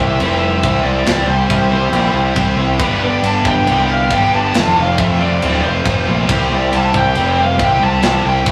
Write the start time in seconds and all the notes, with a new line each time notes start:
Already playing: C2 C3 E4 G4 C5 E5
0.00 C3 G3 C4 C5
0.08 G4 C5
0.14 G4 C5
0.20 F1 C3 G3 C4 G4, crash
0.24 C5
0.30 G4 C5
0.38 C3 G4 C5 E5
0.42 G3 G4 C5
0.52 G4 C5
0.60 C2 C3 G3 C4 G4 C5, kick, crash
0.64 E4 G4 C5
0.69 C5
0.75 G4 C5
0.82 C2 C3 G3 G4 C5 D5
0.90 G4 C5
0.99 G4 C5
1.05 C2 C3 G3 C4 E4 G4 C5, snare, crash
1.14 G4 C5
1.22 G4 C5
1.26 C2 C3 G3 G4 C5
1.38 G4 C5
1.45 G4 C5
1.50 C2 C3 G3 G4 C5, kick, crash
1.60 G4 C5
1.68 C3 E4 G4 C5
1.73 C3 G3 C4 C5
1.77 G4
1.84 G4 C5
1.90 A#1 C3 G3 G4 C5, crash
1.95 C4 C5
2.02 G4 C5
2.09 G4 C5
2.14 C2 C3 G3 G4
2.22 G4 C5
2.29 G4 C5
2.35 C2 C3 G3 C4 E4 G4 C5, kick, crash
2.40 G4 C5
2.48 G4 C5
2.56 C2 C3 G3 G4 C5
2.63 G4 C5
2.71 G4 C5
2.78 G1 G2 D3 G3 B3 D4 G4 B4, kick, crash
2.87 D4 G4
2.95 D4 G4
3.01 G1 G2 D3 D4 G4 D5
3.09 D4 G4
3.18 D4 G4
3.23 G1 G2 D3 D4 G4 A5, crash
3.33 D4 G4
3.40 D4 G4
3.44 G1 G2 D3 G3 B3 D4 G5, kick
3.49 G4
3.55 D4 G4
3.63 C2 G2 D4 G4, crash
3.69 D3 G3 D4 G4
3.79 D4 G4
3.86 G2 D4 G4
3.90 D3 G4 F5
3.94 D4
4.02 D4 G4
4.09 G1 G2 D3 G3 B3 D4 G4, kick, crash
4.13 D4 G4 G5
4.24 D4 G4
4.32 G1 G2 D3 D4 G4 A5
4.40 D4 G4
4.47 D4 G4
4.53 F1 F2 C3 F3 A3 C4 F4, snare, crash
4.62 C4 F4
4.69 C4 F4
4.77 F1 F2 C3 C4 F4 F5
4.84 C4 F4
4.93 C4 F4
4.98 F2 C3 C4 F4 E5, kick, crash
5.07 C4 F4
5.15 C4 F4
5.19 F2 C3 F3 A3 C4 D5
5.24 F4
5.30 C4 F4
5.37 C4 F4
5.42 D1 F2 C3 F3 C4 F4, crash
5.53 C4 F4
5.61 C4 F4 C5
5.65 F1 F2 C3 C4 F4
5.76 C4 F4
5.83 F1 F2 C3 F3 A3 C4 F4, kick, crash
5.90 C4 F4
5.98 C4 F4
6.06 A#1 F2 C3 C4 F4
6.13 C4 F4
6.21 C4 F4
6.27 C2 C3 G3 C4 E4 G4 C5, kick, crash
6.32 C5
6.38 G4 C5
6.45 G4 C5
6.51 C2 C3 G3 G4 C5 D5
6.61 G4 C5
6.69 C3 G4 C5, crash
6.73 C2 G3 G4 A5
6.78 C5
6.83 G4 C5
6.91 C2 C3 G3 E4 G4 C5, kick
6.95 C3 G3 C4 G5
7.00 G4 C5
7.08 G4 C5
7.15 F1 C3 G3 C4 G4 C5, crash
7.23 G4 C5
7.31 G4 C5
7.38 C3 G3 G4 C5 F5
7.46 G4 C5
7.55 C3 G4 C5
7.59 C2 C3 G3 C4 E4 G4 C5, kick, crash
7.64 C5 G5
7.70 G4 C5
7.78 C3 G3 G4 C5
7.82 C2 G4 C5 A5
7.94 G4 C5
8.01 C2 C3 G3 C4 E4 G4 C5, snare, crash
8.09 G4 C5
8.18 G4 C5
8.24 C2 C3 G3 G4 C5 G5
8.33 G4 C5
8.41 G4 C5
8.46 C2 C3 G3 G4 C5 E5, kick, crash